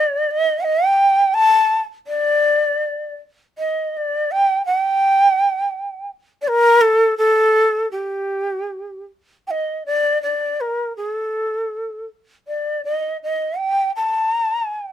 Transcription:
0, 0, Header, 1, 2, 480
1, 0, Start_track
1, 0, Tempo, 712589
1, 425, Time_signature, 2, 2, 24, 8
1, 1389, Tempo, 752823
1, 2829, Tempo, 728155
1, 5229, Tempo, 754717
1, 7629, Tempo, 724638
1, 9741, End_track
2, 0, Start_track
2, 0, Title_t, "Shakuhachi"
2, 0, Program_c, 0, 77
2, 0, Note_on_c, 0, 74, 106
2, 207, Note_on_c, 0, 75, 106
2, 218, Note_off_c, 0, 74, 0
2, 433, Note_off_c, 0, 75, 0
2, 433, Note_on_c, 0, 75, 102
2, 588, Note_off_c, 0, 75, 0
2, 588, Note_on_c, 0, 79, 102
2, 904, Note_on_c, 0, 81, 119
2, 914, Note_off_c, 0, 79, 0
2, 1214, Note_off_c, 0, 81, 0
2, 1396, Note_on_c, 0, 74, 84
2, 2085, Note_off_c, 0, 74, 0
2, 2359, Note_on_c, 0, 75, 71
2, 2606, Note_on_c, 0, 74, 85
2, 2615, Note_off_c, 0, 75, 0
2, 2825, Note_on_c, 0, 79, 98
2, 2834, Note_off_c, 0, 74, 0
2, 3047, Note_off_c, 0, 79, 0
2, 3051, Note_on_c, 0, 78, 99
2, 3123, Note_off_c, 0, 78, 0
2, 3123, Note_on_c, 0, 79, 99
2, 3987, Note_off_c, 0, 79, 0
2, 4211, Note_on_c, 0, 74, 80
2, 4253, Note_on_c, 0, 70, 107
2, 4263, Note_off_c, 0, 74, 0
2, 4471, Note_on_c, 0, 69, 101
2, 4481, Note_off_c, 0, 70, 0
2, 4709, Note_off_c, 0, 69, 0
2, 4713, Note_on_c, 0, 69, 100
2, 5188, Note_off_c, 0, 69, 0
2, 5199, Note_on_c, 0, 67, 70
2, 5913, Note_off_c, 0, 67, 0
2, 6190, Note_on_c, 0, 79, 68
2, 6213, Note_on_c, 0, 75, 74
2, 6219, Note_off_c, 0, 79, 0
2, 6421, Note_off_c, 0, 75, 0
2, 6435, Note_on_c, 0, 74, 83
2, 6660, Note_off_c, 0, 74, 0
2, 6672, Note_on_c, 0, 74, 72
2, 6911, Note_on_c, 0, 70, 71
2, 6921, Note_off_c, 0, 74, 0
2, 7137, Note_off_c, 0, 70, 0
2, 7141, Note_on_c, 0, 68, 59
2, 7230, Note_off_c, 0, 68, 0
2, 7230, Note_on_c, 0, 69, 59
2, 7839, Note_off_c, 0, 69, 0
2, 8120, Note_on_c, 0, 74, 59
2, 8343, Note_off_c, 0, 74, 0
2, 8365, Note_on_c, 0, 75, 77
2, 8582, Note_off_c, 0, 75, 0
2, 8622, Note_on_c, 0, 75, 78
2, 8851, Note_on_c, 0, 79, 82
2, 8861, Note_off_c, 0, 75, 0
2, 9074, Note_off_c, 0, 79, 0
2, 9104, Note_on_c, 0, 81, 75
2, 9741, Note_off_c, 0, 81, 0
2, 9741, End_track
0, 0, End_of_file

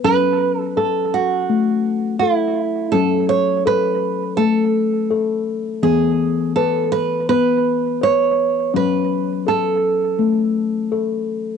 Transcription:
0, 0, Header, 1, 3, 480
1, 0, Start_track
1, 0, Key_signature, 3, "minor"
1, 0, Tempo, 724638
1, 22, Time_signature, 4, 2, 24, 8
1, 7664, End_track
2, 0, Start_track
2, 0, Title_t, "Nylon-string guitar"
2, 0, Program_c, 0, 24
2, 30, Note_on_c, 0, 71, 70
2, 394, Note_off_c, 0, 71, 0
2, 394, Note_on_c, 0, 69, 70
2, 508, Note_off_c, 0, 69, 0
2, 511, Note_on_c, 0, 69, 63
2, 754, Note_off_c, 0, 69, 0
2, 755, Note_on_c, 0, 66, 69
2, 1450, Note_off_c, 0, 66, 0
2, 1453, Note_on_c, 0, 64, 68
2, 1932, Note_on_c, 0, 69, 76
2, 1952, Note_off_c, 0, 64, 0
2, 2176, Note_off_c, 0, 69, 0
2, 2179, Note_on_c, 0, 73, 74
2, 2427, Note_off_c, 0, 73, 0
2, 2429, Note_on_c, 0, 71, 75
2, 2880, Note_off_c, 0, 71, 0
2, 2894, Note_on_c, 0, 69, 74
2, 3592, Note_off_c, 0, 69, 0
2, 3862, Note_on_c, 0, 68, 69
2, 4341, Note_off_c, 0, 68, 0
2, 4344, Note_on_c, 0, 69, 68
2, 4582, Note_off_c, 0, 69, 0
2, 4584, Note_on_c, 0, 71, 77
2, 4822, Note_off_c, 0, 71, 0
2, 4830, Note_on_c, 0, 71, 84
2, 5319, Note_off_c, 0, 71, 0
2, 5322, Note_on_c, 0, 73, 83
2, 5802, Note_off_c, 0, 73, 0
2, 5805, Note_on_c, 0, 71, 77
2, 6277, Note_off_c, 0, 71, 0
2, 6280, Note_on_c, 0, 69, 66
2, 7443, Note_off_c, 0, 69, 0
2, 7664, End_track
3, 0, Start_track
3, 0, Title_t, "Steel tongue drum"
3, 0, Program_c, 1, 114
3, 28, Note_on_c, 1, 54, 55
3, 29, Note_on_c, 1, 61, 63
3, 505, Note_off_c, 1, 61, 0
3, 509, Note_on_c, 1, 69, 64
3, 986, Note_off_c, 1, 69, 0
3, 990, Note_on_c, 1, 57, 60
3, 1466, Note_off_c, 1, 57, 0
3, 1471, Note_on_c, 1, 69, 61
3, 1919, Note_off_c, 1, 54, 0
3, 1943, Note_on_c, 1, 61, 70
3, 1946, Note_on_c, 1, 54, 67
3, 1947, Note_off_c, 1, 69, 0
3, 2421, Note_on_c, 1, 69, 65
3, 2423, Note_off_c, 1, 61, 0
3, 2902, Note_off_c, 1, 69, 0
3, 2902, Note_on_c, 1, 57, 65
3, 3382, Note_on_c, 1, 69, 66
3, 3383, Note_off_c, 1, 57, 0
3, 3839, Note_off_c, 1, 54, 0
3, 3859, Note_on_c, 1, 52, 67
3, 3861, Note_on_c, 1, 59, 69
3, 3863, Note_off_c, 1, 69, 0
3, 4343, Note_off_c, 1, 59, 0
3, 4351, Note_on_c, 1, 71, 67
3, 4828, Note_off_c, 1, 71, 0
3, 4833, Note_on_c, 1, 59, 65
3, 5308, Note_off_c, 1, 59, 0
3, 5309, Note_on_c, 1, 71, 62
3, 5755, Note_off_c, 1, 52, 0
3, 5786, Note_off_c, 1, 71, 0
3, 5789, Note_on_c, 1, 61, 69
3, 5790, Note_on_c, 1, 54, 61
3, 6266, Note_off_c, 1, 61, 0
3, 6270, Note_on_c, 1, 69, 61
3, 6746, Note_off_c, 1, 69, 0
3, 6749, Note_on_c, 1, 57, 63
3, 7225, Note_off_c, 1, 57, 0
3, 7232, Note_on_c, 1, 69, 59
3, 7664, Note_off_c, 1, 54, 0
3, 7664, Note_off_c, 1, 69, 0
3, 7664, End_track
0, 0, End_of_file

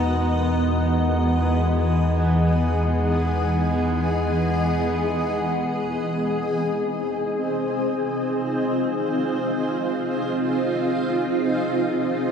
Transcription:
0, 0, Header, 1, 5, 480
1, 0, Start_track
1, 0, Tempo, 500000
1, 11823, End_track
2, 0, Start_track
2, 0, Title_t, "Glass harmonica"
2, 0, Program_c, 0, 92
2, 0, Note_on_c, 0, 78, 54
2, 5481, Note_off_c, 0, 78, 0
2, 11823, End_track
3, 0, Start_track
3, 0, Title_t, "Ambient pad"
3, 0, Program_c, 1, 92
3, 0, Note_on_c, 1, 52, 76
3, 0, Note_on_c, 1, 59, 81
3, 0, Note_on_c, 1, 66, 74
3, 0, Note_on_c, 1, 68, 83
3, 0, Note_on_c, 1, 70, 66
3, 0, Note_on_c, 1, 75, 74
3, 1029, Note_off_c, 1, 66, 0
3, 1048, Note_off_c, 1, 70, 0
3, 5454, Note_on_c, 1, 60, 65
3, 5460, Note_off_c, 1, 59, 0
3, 5463, Note_off_c, 1, 52, 0
3, 6005, Note_on_c, 1, 63, 81
3, 6892, Note_on_c, 1, 65, 71
3, 11823, Note_off_c, 1, 60, 0
3, 11823, Note_off_c, 1, 63, 0
3, 11823, Note_off_c, 1, 65, 0
3, 11823, Note_off_c, 1, 68, 0
3, 11823, Note_off_c, 1, 75, 0
3, 11823, End_track
4, 0, Start_track
4, 0, Title_t, "Synth drone"
4, 0, Program_c, 2, 95
4, 0, Note_on_c, 2, 56, 60
4, 0, Note_on_c, 2, 63, 59
4, 5450, Note_off_c, 2, 56, 0
4, 5456, Note_off_c, 2, 63, 0
4, 5461, Note_on_c, 2, 56, 66
4, 5468, Note_on_c, 2, 63, 66
4, 11823, Note_off_c, 2, 56, 0
4, 11823, Note_off_c, 2, 63, 0
4, 11823, End_track
5, 0, Start_track
5, 0, Title_t, "Analog synth bass"
5, 0, Program_c, 3, 38
5, 0, Note_on_c, 3, 40, 85
5, 5415, Note_off_c, 3, 40, 0
5, 11823, End_track
0, 0, End_of_file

